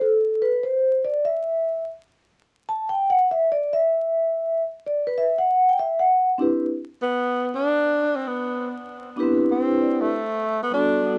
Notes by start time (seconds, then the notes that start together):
0.01 A4
0.42 B4
0.63 C5
1.05 D5
1.25 E5
2.69 A5
2.89 G5
3.10 F#5
3.31 E5
3.52 D5
3.73 E5
4.86 D5
5.07 B4
5.18 E5
5.38 F#5
5.69 G5
5.79 E5
5.99 F#5
6.38 C4 D4 E4 G4
6.42 B4
7.02 B3
7.55 D4
8.16 C4
8.27 B3
9.16 B3 D4 E4 G4 B4
9.23 C4
9.51 C4
9.78 C4 D4 E4 G4 D5
10.01 A3
10.63 B3
10.70 G3 B3 D4 F#4 A4
11.02 G3 B3 D4 F#4 A4